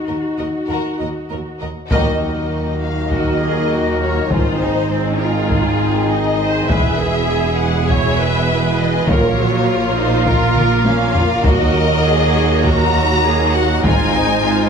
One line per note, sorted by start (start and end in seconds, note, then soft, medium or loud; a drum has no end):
0.00 1.31 D#4 soft
0.00 1.57 F#4 soft
0.07 0.16 D#2 soft
0.07 0.17 D#2 soft
0.07 0.16 A#4 soft
0.07 0.15 D#5 soft
0.38 0.47 D#2 soft
0.38 0.48 D#2 soft
0.38 0.46 A#4 soft
0.38 0.46 D#5 soft
0.38 0.46 F#5 soft
0.68 0.77 D#2 soft
0.68 0.79 D#2 soft
0.68 0.98 F#4 soft
0.68 0.97 A#4 soft
0.68 0.98 A#4 soft
0.99 1.08 D#2 soft
0.99 1.10 D#2 soft
0.99 1.08 A#4 soft
0.99 1.07 D#5 soft
0.99 1.09 F#5 soft
1.29 1.39 D#2 soft
1.29 1.40 D#2 soft
1.29 1.39 A#4 soft
1.29 1.37 D#5 soft
1.60 1.70 D#2 soft
1.60 1.69 A#4 soft
1.60 1.69 D#5 soft
1.60 1.68 F#5 soft
1.90 4.28 D#2 medium
1.90 4.87 A#2 medium
1.90 6.66 D#3 medium
1.90 4.27 F#3 medium
1.90 4.28 A#3 medium
1.90 6.66 D#4 medium
1.90 4.27 F#4 medium
1.90 4.27 A#4 medium
1.90 2.77 D#5 medium
1.90 taiko medium
2.81 3.11 F5 medium
3.11 3.39 F#4 soft
3.11 4.02 D#5 medium
3.11 taiko medium
3.42 3.71 G#4 soft
3.72 4.32 F#4 soft
4.02 4.31 C#5 medium
4.30 6.66 G#1 soft
4.30 6.66 G#2 soft
4.30 9.08 G#3 soft
4.30 6.69 C4 medium
4.30 4.60 F4 soft
4.30 9.08 G#4 medium
4.30 9.05 G#4 soft
4.30 5.21 C5 medium
4.30 9.08 G#5 medium
4.30 taiko medium
4.60 4.91 D#4 soft
4.91 6.71 G#2 medium
4.91 5.21 C4 medium
5.21 6.11 F4 medium
5.21 5.50 A#4 medium
5.50 6.10 G#4 medium
5.50 taiko medium
6.11 6.40 D#4 soft
6.11 6.70 D#5 medium
6.40 6.70 C5 medium
6.69 9.04 E1 medium
6.69 9.04 E2 medium
6.69 9.08 B2 soft
6.69 9.04 E3 soft
6.69 9.08 B3 medium
6.69 9.08 E4 medium
6.69 9.04 E4 soft
6.69 9.04 G#4 medium
6.69 7.00 B4 medium
6.69 7.57 E5 medium
6.69 taiko medium
7.01 7.90 G#4 medium
7.59 7.89 F#5 medium
7.89 8.20 C#5 medium
7.89 8.78 E5 medium
7.89 taiko medium
8.21 9.09 B4 medium
8.79 9.08 D#5 medium
9.07 11.41 A#1 medium
9.07 11.41 A#2 medium
9.07 13.80 A#2 medium
9.07 13.84 A#3 medium
9.07 13.68 A#3 medium
9.07 11.41 F4 medium
9.07 11.45 F4 medium
9.07 9.37 A#4 medium
9.07 13.84 A#4 medium
9.07 13.80 A#4 medium
9.07 9.97 C#5 medium
9.07 11.45 F5 medium
9.07 taiko medium
9.38 9.67 F#3 medium
9.66 9.96 F4 medium
9.96 10.26 D#4 medium
9.96 10.27 C5 medium
10.26 10.86 F4 medium
10.26 10.84 A#4 medium
10.26 taiko medium
10.56 taiko mid medium
10.85 11.15 C#4 medium
10.85 11.45 F5 medium
10.85 taiko high medium
11.15 11.45 F4 medium
11.15 taiko low medium
11.43 13.84 D#2 medium
11.43 13.84 F#3 medium
11.43 14.69 D#4 medium
11.43 13.80 F#4 medium
11.43 11.74 F#4 medium
11.43 13.85 F#4 medium
11.43 12.65 D#5 loud
11.43 14.69 D#5 medium
11.43 taiko medium
11.76 12.05 A#4 medium
12.06 12.65 G#4 medium
12.64 13.25 F#4 medium
12.64 13.54 A#5 loud
12.64 taiko medium
13.26 13.55 G#4 medium
13.55 13.84 F#4 medium
13.55 13.84 F#5 medium
13.83 14.69 G#1 medium
13.83 14.69 G#2 medium
13.83 14.69 G#3 medium
13.83 14.69 C4 medium
13.83 14.69 D#4 medium
13.83 14.13 F4 medium
13.83 14.69 G#4 medium
13.83 14.69 C5 medium
13.83 14.69 G#5 loud
13.83 taiko medium
14.14 14.43 D#4 medium
14.43 14.69 F4 medium